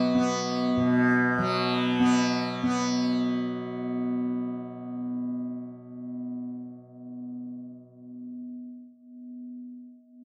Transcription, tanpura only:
Already playing: B2 F#3 B3
0.15 B3
0.77 B2
1.38 F#3
2.00 B3
2.63 B3

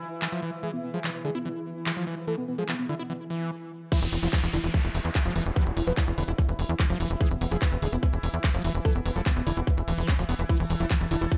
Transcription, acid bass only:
0.22 E3
0.32 F3
0.43 E3
0.63 E3
0.94 F3
1.04 E3
1.25 D3
1.35 E4
1.45 E3
1.86 E3
1.97 F3
2.07 E3
2.27 E3
2.58 F3
2.69 E3
2.89 D3
2.99 E4
3.10 E3
3.30 E3
3.92 E3
4.23 F3
4.33 E3
4.53 D3
4.64 E4
4.74 E3
5.15 E3
5.25 F3
5.36 E3
5.56 E3
5.87 F3
5.97 E3
6.18 D3
6.28 E4
6.38 E3
6.80 E3
6.90 F3
7.00 E3
7.21 E3
7.51 F3
7.62 E3
7.82 D3
7.93 E4
8.03 E3
8.44 E3
8.54 F3
8.64 E3
8.85 E3
9.16 F3
9.26 E3
9.47 D3
9.57 E4
9.67 E3
9.88 E3
10.08 E4
10.19 F3
10.29 B3
10.39 E3
10.49 E3
10.80 F3
10.91 E3
11.11 D3
11.21 E4
11.32 E3

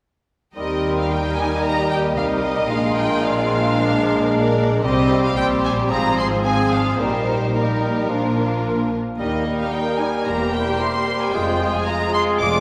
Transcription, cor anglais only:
0.56 A#4
4.84 G4
5.37 G4
5.92 G#4
6.46 G#4
7.00 A#4
7.55 A#4
8.10 A#4
9.19 A#4
9.46 A#4
9.73 A#4
9.99 A#4
10.26 A#4
10.52 A#4
10.79 A#4
11.07 A#4
11.34 G#4
11.60 G#4
11.86 G#4
12.13 G#4
12.41 G#4

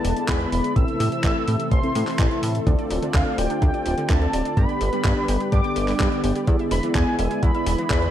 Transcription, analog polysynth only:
Already playing: B3 E4 G#4 D5
0.16 B3 E4 G#4 D5
0.28 B3 E4 G#4 D5
0.52 B3 E4 G#4 D5
0.76 E4
1.12 C4 E4 A4 E5
1.47 C4 E4 A4 E5
1.83 C4 E4 A4 E5
1.95 C4 E4 A4 E5
2.31 C4 E4 A4 E5
2.67 C4 F4 A4 D5
3.02 C4 F4 A4 D5
3.38 C4 F4 A4 D5
3.74 C4 F4 A4 D5
3.98 C4 F4 A4 D5
4.09 C4 F4 A4 D5
4.33 C4 F4 A4 D5
4.57 B3 D4 G4 D5
4.93 B3 D4 G4 D5
5.28 D4 D5
5.64 B3 D4 G4 D5
5.88 B3 D4 G4 D5
6.00 B3 D4 G4 D5
6.24 B3 D4 G4 D5
6.47 B3 E4 G#4 D5
6.83 B3 E4 G#4 D5
7.19 B3 G#4 D5
7.55 B3 E4 G#4 D5
7.79 B3 E4 G#4 D5
7.90 B3 E4 G#4 D5

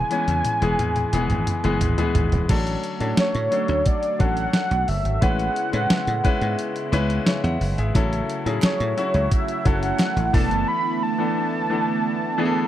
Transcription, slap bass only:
0.28 E2
0.62 E1
0.79 E2
1.13 E1
1.30 G#1
1.64 F#1
1.81 G#1
2.15 G#1
2.32 E1
2.49 A1
3.01 A2
3.18 muted slap bass stroke
3.35 A2
3.69 D2
4.20 A1
4.71 B1
4.88 F#1
5.05 G#1
5.22 A1
5.73 A2
5.90 muted slap bass stroke
6.07 A2
6.41 G#2
6.92 C#2
7.44 E2
7.61 F#1
7.78 G#1
7.95 A1
8.46 A2
8.63 muted slap bass stroke
8.80 A2
9.14 C#2
9.66 F#1
10.16 A1
10.34 E1
10.50 F#1

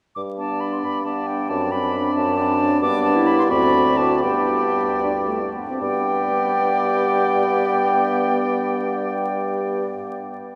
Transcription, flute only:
0.15 D6
0.38 A5
0.60 B5
0.73 C6
0.82 B5
1.04 A5
1.27 G5
1.49 A5
1.71 B5
2.15 A5
2.81 D6
3.04 A5
3.26 B5
3.39 C6
3.49 B5
3.97 A5
4.22 G5
5.81 G5

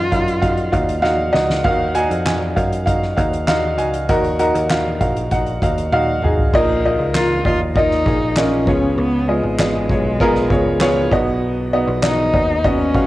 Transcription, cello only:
Already playing: F4
7.14 F4
7.45 F4
7.75 D#4
8.36 C#4
8.98 B3
9.28 G#3
12.05 D#4
12.65 C#4

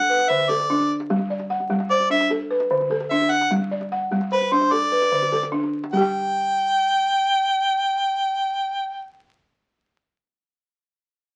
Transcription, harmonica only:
Already playing: F#5
0.28 E5
0.49 D5
1.90 D5
2.11 E5
3.10 E5
3.31 F#5
4.33 B4
4.52 C5
4.72 D5
5.93 G5

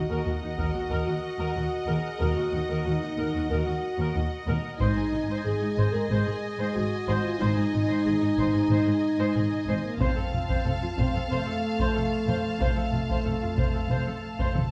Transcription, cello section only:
0.10 D#2
0.26 D#2
0.42 D#2
0.59 D#2
0.75 D#2
0.91 D#2
1.07 D#2
1.39 D#2
1.55 D#2
1.88 D#2
2.21 D#2
2.36 D#2
2.52 D#2
2.69 D#2
2.85 D#2
3.02 D#2
3.18 D#2
3.35 D#2
3.50 D#2
3.66 D#2
3.98 D#2
4.15 D#2
4.47 D#2
4.80 G#2
4.96 G#2
5.12 G#2
5.28 G#2
5.44 G#2
5.61 G#2
5.77 G#2
5.93 G#2
6.09 G#2
6.26 G#2
6.58 G#2
6.75 G#2
7.08 G#2
7.41 G#2
7.56 G#2
7.73 G#2
7.89 G#2
8.06 G#2
8.22 G#2
8.38 G#2
8.54 G#2
8.71 G#2
8.86 G#2
9.19 G#2
9.36 G#2
9.68 G#2
10.00 F2
10.17 F2
10.33 F2
10.49 F2
10.66 F2
10.82 F2
10.98 F2
11.15 F2
11.30 F2
11.47 F2
11.79 F2
11.95 F2
12.27 F2
12.60 F2
12.76 F2
12.93 F2
13.09 F2
13.25 F2
13.42 F2
13.57 F2
13.74 F2
13.90 F2
14.06 F2
14.39 F2
14.55 F2

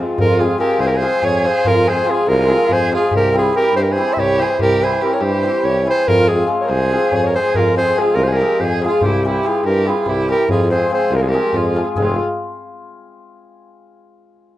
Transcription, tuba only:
0.19 F2
0.79 C2
1.23 F2
1.66 F2
2.27 C2
2.69 F2
3.13 C2
3.74 G2
4.17 C2
4.60 C2
5.21 G2
5.64 C2
6.07 F2
6.69 C2
7.12 F2
7.55 F2
8.16 C2
8.60 F2
9.02 C2
9.64 G2
10.06 C2
10.49 F2
11.10 C2
11.53 F2
11.96 F1

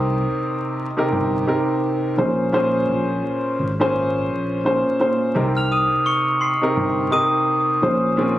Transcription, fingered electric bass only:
Already playing: C2
1.12 G1
2.18 A#1
2.89 A#1
3.59 G#1
4.30 A#1
5.36 C2
6.77 G1
7.83 A#1

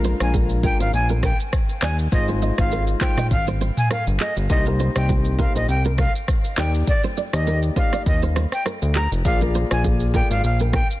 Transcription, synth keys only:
Already playing: G#3 D4 F4 A#4
0.20 G#3 D4 F4 A#4
0.63 G#3 D4 F4 A#4
2.12 G#3 D#4 F4 C5
2.58 G#3 D#4 F4 C5
3.01 G#3 D#4 F4 C5
4.49 A#3 D#4 G4 C5
4.95 A#3 D#4 G4 C5
5.38 A#3 D#4 G4 C5
6.57 A#3 D#4 G4 D5
7.33 A#3 D#4 G4 D5
7.76 A#3 D#4 G4 D5
9.25 A#3 F4 G#4 D5
9.71 A#3 F4 G#4 D5
10.14 A#3 F4 G#4 D5

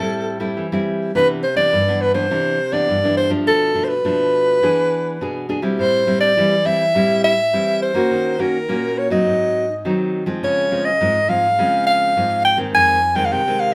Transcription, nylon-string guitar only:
0.00 A2 G3 C4 E4
0.40 G3 C4 E4
0.57 E3
0.72 G3 C4 E4
1.15 C3 E3 B3 D4
1.56 E3 B3 D4
1.73 G2
1.88 E3 B3 D4
2.14 E3 B3 D4
2.31 C3 E3 B3 D4
2.72 E3 B3 D4
2.89 G2
3.04 E3 B3 D4
3.30 F3 A3 D4
3.47 B2
3.74 F3 A3 D4
4.05 B2 F3 A3 D4
4.63 E3 B3 D4 G#4
5.21 B2 B3 D4 G#4
5.49 B3 D4 G#4
5.62 G3 C4 E4
5.79 A2
6.07 G3 C4 E4
6.37 E3 G3 C4 E4
6.65 G3 C4 E4
6.95 A2 G3 C4 E4
7.53 E3 G3 C4 E4
7.94 A#3 C#4 F#4
8.11 D#3
8.39 A#3 C#4 F#4
8.69 A#2 A#3 C#4 F#4
9.10 F#3 C4 D#4
9.27 G#2
9.85 D#3 F#3 C4 D#4
10.26 F3 G#3 C4
10.43 C#3
10.71 F3 G#3 C4
11.01 G#2 F3 G#3 C4
11.29 F3 G#3 C4
11.59 C#3 F3 G#3 C4
12.17 G#2 F3 G#3 C4
12.57 D#3 G#3 C4
12.74 F2
13.15 D#3 G#3 C4
13.32 C3
13.47 D#3 G#3 C4

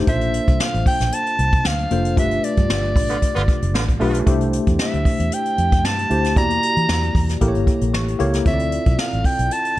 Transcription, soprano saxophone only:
0.09 E5
0.61 F5
0.87 G5
1.14 A5
1.67 F5
2.19 E5
2.44 D5
4.81 E5
5.34 G5
5.85 A5
6.38 A#5
8.47 E5
8.99 F5
9.26 G5
9.52 A5

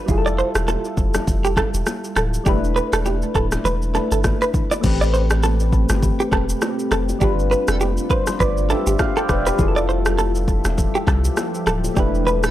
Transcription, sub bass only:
0.08 F1
0.55 E1
0.97 F1
1.27 F1
1.74 E1
2.16 D1
2.46 E1
2.93 E1
3.35 D1
3.65 E1
4.12 G1
4.84 A1
5.90 G1
6.32 E1
6.92 F1
7.21 G1
7.68 F1
8.40 G1
8.87 G1
9.29 E1
9.59 F1
10.65 E1
11.07 C2
11.67 D1
11.97 E1
12.43 D1

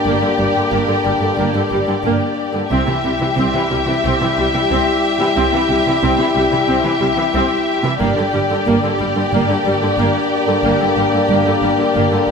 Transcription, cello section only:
0.04 G2
0.21 G2
0.38 G2
0.55 G2
0.71 G2
0.87 G2
1.04 G2
1.21 G2
1.36 G2
1.54 G2
1.71 G2
1.86 G2
2.03 G2
2.54 G2
2.70 C3
2.87 C3
3.03 C3
3.19 C3
3.36 C3
3.53 C3
3.70 C3
3.86 C3
4.04 C3
4.20 C3
4.37 C3
4.54 C3
4.70 C3
5.19 C3
5.36 C3
5.53 C3
5.69 C3
5.86 C3
6.03 C3
6.18 C3
6.36 C3
6.52 C3
6.68 C3
6.84 C3
7.01 C3
7.17 C3
7.34 C3
7.84 C3
8.00 G2
8.17 G2
8.33 G2
8.50 G2
8.66 G2
8.83 G2
8.99 G2
9.15 G2
9.32 G2
9.49 G2
9.66 G2
9.83 G2
9.98 G2
10.47 G2
10.64 G2
10.80 G2
10.96 G2
11.13 G2
11.29 G2
11.46 G2
11.62 G2
11.79 G2
11.96 G2
12.13 G2

